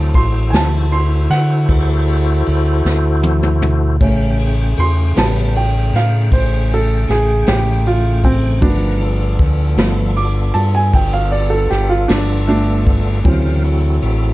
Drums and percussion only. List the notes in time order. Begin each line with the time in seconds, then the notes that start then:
0.14 kick, ride
0.53 snare, ride
0.91 ride
1.30 snare, ride
1.69 kick, ride
2.07 ride
2.46 ride
2.86 snare
3.23 high tom
3.43 mid tom
3.62 mid tom
4.01 kick, ride
4.39 ride
4.77 ride
5.16 snare, ride
5.55 ride
5.94 snare, ride
6.32 kick, ride
6.71 ride
7.08 snare, ride
7.46 snare, ride
7.85 ride
8.24 kick, ride
8.62 kick, ride
9.00 ride
9.39 kick, ride
9.77 snare, ride
10.16 ride
10.54 ride
10.94 kick, ride
11.32 ride
11.70 snare, ride
12.09 snare, ride
12.48 ride
12.87 kick, ride
13.25 kick, ride
13.64 ride
14.02 ride